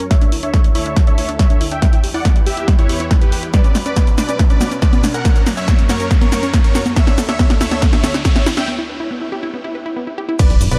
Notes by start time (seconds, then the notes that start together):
Already playing: riser
0.00 C#4, closed hi-hat
0.11 D2 D3 A3 E4 A4 C#5 E5, kick, snare, closed hi-hat
0.21 D4, closed hi-hat
0.32 E4, open hi-hat
0.43 D4 C#5 E5, closed hi-hat
0.54 A3, kick, snare, closed hi-hat
0.64 D4, closed hi-hat
0.75 E4 C#5 E5, open hi-hat
0.86 D4, closed hi-hat
0.96 A3, kick, snare, closed hi-hat
1.07 D4 C#5 E5, closed hi-hat
1.18 E4, open hi-hat
1.29 D4, closed hi-hat
1.39 A3 C#5 E5, kick, snare, closed hi-hat
1.50 D4, closed hi-hat
1.61 E4, open hi-hat
1.71 D4 E5 G5, closed hi-hat
1.82 E2 E3 B3 G4 B4, kick, snare, closed hi-hat
1.93 E4, closed hi-hat
2.04 G4, open hi-hat
2.14 E4 D5 F#5, open hi-hat
2.25 B3, kick, snare, closed hi-hat
2.36 E4, closed hi-hat
2.46 G4 E5, open hi-hat
2.57 E4, closed hi-hat
2.68 B3, kick, snare, closed hi-hat
2.79 E4 C#5, closed hi-hat
2.89 G4, open hi-hat
3.00 E4, closed hi-hat
3.11 B3, kick, snare, closed hi-hat
3.21 E4 G4 B4, closed hi-hat
3.32 G4, open hi-hat
3.43 E4, closed hi-hat
3.54 B2 F#3 B3 C#4 D4 B4 D5, kick, snare, closed hi-hat, shaker
3.64 C#4, closed hi-hat, shaker
3.75 F#4, snare, open hi-hat, shaker
3.86 C#4 B4 D5, closed hi-hat, shaker
3.96 B3, kick, snare, closed hi-hat, high conga, shaker
4.07 C#4, closed hi-hat, shaker
4.18 D4 B4 D5, snare, open hi-hat, shaker
4.29 C#4, closed hi-hat, shaker
4.39 B3, kick, snare, closed hi-hat, shaker
4.50 C#4 B4 D5, closed hi-hat, shaker
4.61 F#4, snare, open hi-hat, high conga, shaker
4.71 C#4, closed hi-hat, shaker
4.82 B3 B4 D5, kick, snare, closed hi-hat, shaker
4.93 C#4, closed hi-hat, high conga, shaker
5.04 D4, snare, open hi-hat, shaker
5.14 C#4 A#4 F#5, closed hi-hat, shaker
5.25 F#2 A#3 C#5, kick, snare, closed hi-hat, shaker
5.36 C#4, closed hi-hat, shaker
5.46 A#4, snare, open hi-hat, shaker
5.57 C#4 C#5 E5, open hi-hat, shaker
5.68 A#3, kick, snare, closed hi-hat, high conga, shaker
5.79 C#4, closed hi-hat, shaker
5.89 F#4 A#4 C#5, snare, open hi-hat, shaker
6.00 C#4, closed hi-hat, shaker
6.11 A#3, kick, snare, closed hi-hat, shaker
6.21 C#4 A#4 C#5, closed hi-hat, high conga, shaker
6.32 A#4, snare, open hi-hat, shaker
6.43 C#4, closed hi-hat, shaker
6.54 A#3, kick, snare, closed hi-hat, shaker
6.64 C#4 A#4 C#5, closed hi-hat, shaker
6.75 F#4, snare, open hi-hat, shaker
6.86 C#4, closed hi-hat, high conga, shaker
6.96 D2 D3 A3 E4 A4 C#5 E5, kick, snare, closed hi-hat, shaker
7.07 D4, snare, closed hi-hat, shaker
7.18 A4, snare, open hi-hat, shaker
7.29 D4 C#5 E5, snare, closed hi-hat, shaker
7.39 A3, kick, snare, closed hi-hat, high conga, shaker
7.50 D4, snare, closed hi-hat, shaker
7.61 E4 C#5 E5, snare, open hi-hat, shaker
7.71 D4, snare, closed hi-hat, shaker
7.82 A3, kick, snare, closed hi-hat, shaker
7.93 D4 C#5 E5, snare, closed hi-hat, shaker
8.04 A4, snare, open hi-hat, high conga, shaker
8.14 D4, snare, closed hi-hat, shaker
8.25 A3 C#5 E5, kick, snare, closed hi-hat, shaker
8.36 D4, snare, closed hi-hat, high conga, shaker
8.46 E4, snare, open hi-hat, shaker
8.57 D4 E5 G5, snare, closed hi-hat, shaker
8.68 B3
8.79 E4
8.89 B4
9.00 E4
9.11 B3
9.21 E4
9.32 G4
9.43 E4
9.54 B3
9.64 E4
9.75 B4
9.86 E4
9.96 B3
10.07 E4
10.18 G4
10.29 E4
10.39 D3 B3 C#4 B4 D5, kick, closed hi-hat, crash, impact, shaker
10.50 B1 C#4, closed hi-hat, shaker
10.61 F#1 D4, open hi-hat, shaker
10.71 B1 F#4 B4 D5, closed hi-hat, shaker